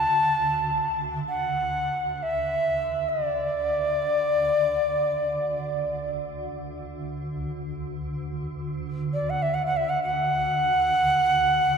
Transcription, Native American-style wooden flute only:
Already playing: A5
1.29 F#5
2.23 E5
3.09 D5
9.14 D5
9.30 F#5
9.42 E5
9.54 F#5
9.67 F#5
9.77 E5
9.89 F#5
10.03 F#5

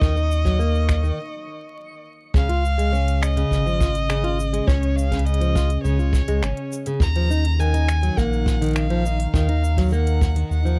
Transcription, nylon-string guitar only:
0.01 D#3
0.16 D#4
0.45 F#3
0.59 A#3
1.03 D#3
2.34 C#3
2.49 F4
2.78 G#3
2.93 C#4
3.37 C#3
3.66 F3
3.80 F4
4.09 C#3
4.24 F4
4.53 G#3
4.67 C#4
5.12 C#3
5.41 F3
5.55 F4
5.84 C#3
5.99 F4
6.28 G#3
6.43 C#4
6.87 C#3
7.16 F3
7.30 D#4
7.59 D#3
7.74 D#4
8.03 F#3
8.17 A#3
8.61 D#3
8.90 F3
9.05 D#4
9.34 D#3
9.49 D#4
9.78 F#3
9.92 A#3
10.36 D#3
10.65 F3

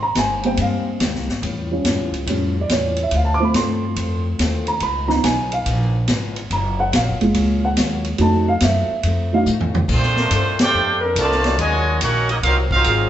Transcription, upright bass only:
Already playing: G#1
0.15 G1
0.58 G2
1.00 D#2
1.14 C2
1.28 G#1
1.42 E2
1.84 F#2
1.97 E2
2.11 C#2
2.26 F2
2.69 E2
3.11 D2
3.54 G2
3.96 F2
4.39 D#2
4.81 C#2
5.23 B1
5.66 A#1
6.08 G#1
6.50 F#1
6.93 A#1
7.07 F#1
7.20 F1
7.34 C#2
7.76 D#2
8.19 F2
8.61 F#2
8.89 muted upright bass stroke
9.03 F2
9.46 A2
9.88 A#2
10.31 G2
10.74 F2
11.15 C2
11.58 D#2
12.01 A#1
12.43 C2
12.85 G#1

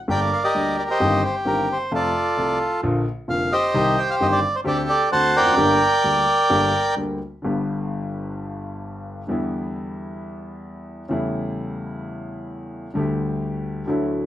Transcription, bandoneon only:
0.10 A#4 D5 G5
0.33 F5
0.44 G4 A#4 D#5
0.79 D5
0.90 G4 C5 D#5
1.25 C5
1.47 A#4
1.72 C5
1.94 F4 A4 D5
3.30 F5
3.52 G4 C5 D#5
3.98 G5
4.10 F5
4.22 D#5
4.32 D5
4.55 C5
4.67 G4 A4 D5
4.89 D5
5.12 C5 F#5 A5
5.36 A#4 D5 G5

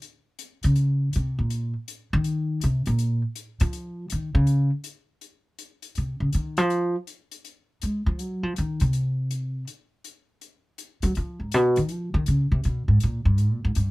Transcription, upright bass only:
0.64 C#3
1.16 C3
1.39 A#2
2.13 D#3
2.64 C3
2.87 A#2
3.61 F3
4.12 D#3
4.35 C#3
5.98 C3
6.20 C#3
6.34 D#3
6.58 F3
7.83 G#3
8.06 F3
8.20 F#3
8.43 F3
8.58 D#3
8.81 C3
11.03 F#3
11.17 F3
11.40 G#2
11.54 B2
11.77 D#3
11.91 F3
12.14 D#3
12.28 C#3
12.52 C3
12.65 B2
12.88 G#2
13.03 A#2
13.25 G2
13.40 G#2
13.52 A#2
13.65 G#2
13.76 G2

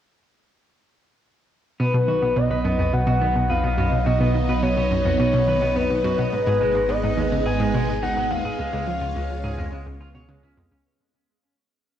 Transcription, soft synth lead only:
1.80 B4
2.37 D#5
2.93 F#5
3.50 F5
4.06 D#5
4.63 C#5
5.20 C#5
5.76 B4
6.33 B4
6.89 D#5
7.46 G#5
8.03 F#5
8.31 F5

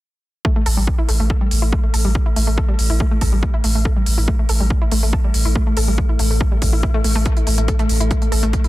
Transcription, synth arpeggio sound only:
0.45 A3
0.56 A3
0.66 A4
0.77 G3
0.98 E4
1.09 A3
1.20 A3
1.30 A4
1.41 G3
1.62 E4
1.73 A3
1.83 A3
1.94 A4
2.05 G3
2.26 E4
2.36 A3
2.47 A3
2.58 A4
2.69 G3
2.90 E4
3.00 A3
3.11 A3
3.22 A4
3.33 G3
3.54 E4
3.64 A3
3.75 A3
3.85 A4
3.96 G3
4.18 E4
4.28 A3
4.39 A3
4.49 A4
4.60 G3
4.82 E4
4.92 A3
5.03 A3
5.13 A4
5.24 G3
5.45 E4
5.56 A3
5.67 A3
5.77 A4
5.88 G3
6.09 E4
6.19 A3
6.30 A3
6.41 A4
6.52 G3
6.73 E4
6.83 E4
6.94 A3
7.05 A3
7.15 A3
7.37 E4
7.47 A3
7.58 A3
7.68 A4
7.79 A3
8.00 E4
8.11 A3
8.22 A3
8.32 A4
8.43 A3
8.64 E4

